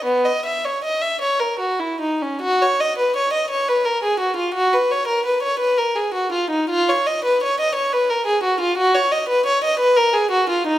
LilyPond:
\new Staff \with { instrumentName = "Violin" } { \time 6/8 \key b \major \tempo 4. = 57 b16 dis''16 e''16 cis''16 dis''16 e''16 cis''16 ais'16 fis'16 e'16 dis'16 cis'16 | \key fis \major fis'16 cis''16 dis''16 b'16 cis''16 dis''16 cis''16 b'16 ais'16 gis'16 fis'16 eis'16 | fis'16 b'16 cis''16 ais'16 b'16 cis''16 b'16 ais'16 gis'16 fis'16 eis'16 dis'16 | eis'16 cis''16 dis''16 b'16 cis''16 dis''16 cis''16 b'16 ais'16 gis'16 fis'16 eis'16 |
fis'16 cis''16 dis''16 b'16 cis''16 dis''16 b'16 ais'16 gis'16 fis'16 eis'16 dis'16 | }